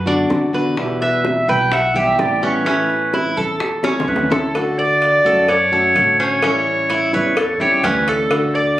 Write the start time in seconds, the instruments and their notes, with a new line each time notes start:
Already playing: upright bass F#2
0.06 nylon-string guitar D3 B3 D4 F#4, cuban tres D4, high bongo
0.30 upright bass E2, nylon-string guitar D3 B3 D4 F#4, high bongo, low bongo
0.53 nylon-string guitar D3 B3 D4 F#4, cuban tres B4, high bongo
0.76 nylon-string guitar B2 E3 G3 B3 E4, clarinet G4, high bongo
1.01 clarinet B4, cuban tres E5, high bongo
1.25 clarinet E5, high bongo
1.48 upright bass B1, cuban tres B4, clarinet G5
1.71 cuban tres E5, clarinet F#5, muted nylon-string guitar stroke, high bongo
1.94 nylon-string guitar E3 G3 B3 E4, cuban tres G4, clarinet E5, high bongo
2.18 upright bass A1, nylon-string guitar E3 G3 B3 E4, clarinet D5, high bongo, low bongo
2.42 nylon-string guitar E3 G3 B3 E4, cuban tres C#4, clarinet B4, high bongo
2.65 nylon-string guitar E3 A3 C#4 E4, cuban tres C#4, high bongo
2.90 high bongo
3.13 cuban tres E4, high bongo
3.37 upright bass E2, cuban tres A4
3.60 muted nylon-string guitar stroke, high bongo
3.83 nylon-string guitar A3 C#4 E4, cuban tres C#4, high bongo
4.00 low bongo
4.06 upright bass D2, nylon-string guitar E3 A3 C#4 E4, clarinet B4
4.16 low bongo
4.30 nylon-string guitar A3 C#4 E4, cuban tres A4, clarinet A4, low bongo
4.55 nylon-string guitar D3 A3 F#4, cowbell
4.79 clarinet D5, cuban tres D5
5.02 cowbell
5.25 upright bass F#2, nylon-string guitar A3 C#4 F#4, cuban tres A4
5.48 clarinet C#5, cuban tres D5, muted nylon-string guitar stroke, cowbell
5.72 nylon-string guitar A3 C#4 F#4, cuban tres A4
5.95 upright bass A1, nylon-string guitar D3 A3 C#4 F#4, cowbell
6.19 cuban tres C#4, clarinet C#5
6.42 nylon-string guitar E3 G3 C#4 E4, cuban tres C#4, cowbell
6.90 cuban tres E4, cowbell
7.13 upright bass E2, nylon-string guitar G3 C#4 E4, clarinet B4, cuban tres C#5
7.37 clarinet A4, muted nylon-string guitar stroke, cowbell
7.60 upright bass E2, nylon-string guitar G3 C#4 E4, cuban tres G4, clarinet C#5
7.83 upright bass D2, nylon-string guitar E3 G3 C#4 E4, cuban tres C#4, clarinet B4, cowbell
8.08 cuban tres A4, clarinet A4, cowbell
8.30 nylon-string guitar D3 A3 F#4, cowbell
8.55 cuban tres D5, clarinet D5